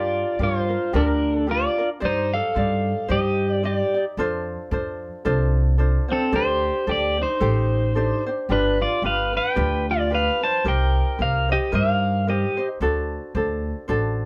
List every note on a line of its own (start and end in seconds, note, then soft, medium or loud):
0.00 0.21 G2 medium
0.00 0.39 D4 medium
0.00 0.37 F4 medium
0.00 0.39 F4 medium
0.00 0.39 G4 medium
0.00 0.40 A#4 medium
0.00 0.43 D5 medium
0.39 0.74 G2 medium
0.39 0.70 D4 medium
0.39 0.69 F4 medium
0.39 0.70 G4 medium
0.39 0.68 A#4 medium
0.43 0.92 F4 medium
0.43 0.97 C5 medium
0.69 0.92 D4 soft
0.69 0.93 F4 soft
0.69 0.93 A#4 soft
0.93 1.64 D2 medium
0.93 1.47 D4 medium
0.93 1.45 D4 medium
0.93 1.47 F4 medium
0.93 1.46 G4 medium
0.93 1.47 A#4 medium
0.93 1.36 A#4 medium
1.36 1.51 A4 medium
1.47 1.78 D4 medium
1.47 1.78 F4 medium
1.47 1.78 G4 soft
1.47 1.77 A#4 medium
1.51 1.89 F4 medium
1.51 1.89 D5 medium
1.78 2.01 D4 soft
1.78 2.01 F4 medium
1.78 2.01 A#4 medium
2.00 2.37 G2 medium
2.00 2.55 D#4 medium
2.00 2.55 G4 medium
2.00 2.54 C5 medium
2.00 2.57 D5 medium
2.05 2.32 D#4 medium
2.05 2.35 C5 medium
2.34 3.07 A4 medium
2.34 3.13 F5 loud
2.55 2.91 G2 medium
2.55 3.07 D#4 medium
2.55 3.08 G4 medium
2.55 3.08 C5 medium
2.55 3.08 D5 medium
3.08 3.80 G2 loud
3.08 3.62 D#4 medium
3.08 3.63 G4 medium
3.08 3.61 G4 medium
3.08 3.63 C5 medium
3.08 3.52 D#5 loud
3.52 3.65 D5 loud
3.63 3.94 D#4 medium
3.63 3.94 G4 medium
3.63 4.04 G4 medium
3.63 3.94 C5 medium
3.63 3.93 D5 medium
3.63 4.04 D5 medium
3.94 4.18 D#4 soft
3.94 4.18 G4 soft
3.94 4.18 D5 medium
4.17 4.52 F2 medium
4.17 4.72 D4 loud
4.17 4.71 F4 medium
4.17 4.71 A4 medium
4.17 4.73 C5 loud
4.71 5.06 F2 medium
4.71 5.25 D4 medium
4.71 5.24 F4 medium
4.71 5.24 A4 medium
4.71 5.25 C5 medium
5.25 5.96 C2 loud
5.25 5.78 D4 medium
5.25 5.78 F4 loud
5.25 5.77 A4 medium
5.25 5.79 C5 medium
5.78 6.09 D4 medium
5.78 6.07 F4 medium
5.78 6.09 A4 medium
5.78 6.07 C5 medium
6.08 6.33 C4 medium
6.08 6.31 D4 soft
6.08 6.32 F4 soft
6.08 6.32 C5 medium
6.12 6.35 A4 medium
6.32 6.68 D2 medium
6.32 6.87 D4 medium
6.32 6.88 G4 medium
6.32 6.85 G4 medium
6.32 6.86 A4 medium
6.32 6.87 C5 medium
6.32 6.90 C5 loud
6.87 7.22 D2 medium
6.87 7.18 D4 medium
6.87 7.18 G4 medium
6.87 7.17 G4 medium
6.87 7.17 A4 medium
6.87 7.16 C5 medium
6.91 7.20 D5 medium
7.17 7.42 D4 soft
7.17 7.40 G4 soft
7.17 7.40 C5 soft
7.22 8.23 D#4 medium
7.22 8.24 C5 medium
7.40 8.11 A1 loud
7.40 7.95 G4 medium
7.40 7.94 A4 medium
7.40 7.95 C5 medium
7.95 8.26 D4 medium
7.95 8.26 G4 medium
7.95 8.25 A4 medium
7.95 8.25 C5 medium
8.26 8.49 D4 soft
8.26 8.48 G4 medium
8.26 8.50 C5 medium
8.49 8.84 G1 medium
8.49 9.02 D4 medium
8.49 8.79 D4 medium
8.49 9.03 F4 medium
8.49 9.03 G4 medium
8.49 9.04 B4 medium
8.49 8.82 B4 medium
8.82 9.03 F4 medium
8.82 9.05 D5 medium
9.02 9.38 G1 medium
9.02 9.33 D4 medium
9.02 9.32 F4 medium
9.02 9.33 G4 medium
9.02 9.31 B4 medium
9.02 9.33 B4 medium
9.06 9.36 F5 medium
9.33 9.55 D4 soft
9.33 9.56 F4 soft
9.33 9.56 B4 soft
9.37 9.85 B4 medium
9.37 9.91 G5 loud
9.56 10.27 D2 loud
9.56 10.09 D4 medium
9.56 10.10 F4 medium
9.56 10.10 G4 medium
9.56 10.11 B4 medium
9.91 10.11 F4 medium
9.91 10.13 D5 medium
10.10 10.41 D4 medium
10.10 10.41 F4 medium
10.10 10.41 G4 medium
10.10 10.40 B4 medium
10.14 10.41 B4 medium
10.14 10.44 F5 medium
10.41 10.65 D4 soft
10.41 10.65 F4 soft
10.41 10.65 B4 medium
10.41 10.65 C5 medium
10.41 10.67 A5 loud
10.65 11.00 C2 medium
10.65 11.18 D#4 medium
10.65 11.19 G4 medium
10.65 11.17 A#4 medium
10.65 11.20 C5 medium
10.65 11.22 G5 medium
10.69 11.17 A#4 medium
11.18 11.54 C2 medium
11.18 11.49 D#4 medium
11.18 11.48 G4 medium
11.18 11.49 A#4 medium
11.18 11.47 C5 medium
11.18 11.52 F5 medium
11.23 11.49 A#4 medium
11.48 11.71 D#4 soft
11.48 11.72 G4 soft
11.48 11.72 C5 soft
11.48 11.75 D#5 medium
11.53 11.73 G4 medium
11.72 12.43 G2 loud
11.72 12.27 D#4 medium
11.72 12.27 G4 medium
11.72 12.26 A#4 medium
11.72 12.24 A#4 medium
11.72 12.28 C5 medium
11.72 12.29 F5 loud
12.27 12.58 D#4 medium
12.27 12.57 G4 medium
12.27 12.68 G4 medium
12.27 12.57 A#4 medium
12.27 12.56 C5 medium
12.27 12.68 D#5 medium
12.57 12.81 D#4 soft
12.57 12.81 G4 medium
12.57 12.80 C5 medium
12.80 13.16 D2 medium
12.80 13.35 D4 medium
12.80 13.35 F#4 medium
12.80 13.35 A4 loud
12.80 13.33 C5 medium
13.35 13.70 D2 medium
13.35 13.88 D4 medium
13.35 13.88 F#4 medium
13.35 13.89 A4 medium
13.35 13.87 C5 medium
13.88 14.25 A1 medium
13.88 14.25 D4 medium
13.88 14.25 F#4 loud
13.88 14.25 A4 loud
13.88 14.25 C5 medium